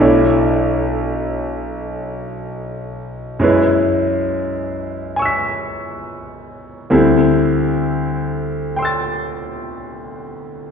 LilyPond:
\new Staff \with { instrumentName = "Grand piano" } { \time 4/4 \key d \major \tempo 4 = 68 << { r1 | r2 <gis'' cis''' e''' b'''>2 | r2 <g'' c''' e''' a'''>2 | } \\ { <b,, a d' e' cis''>1 | <fis, gis cis' e' b'>1 | <d, g c' e' a'>1 | } >> }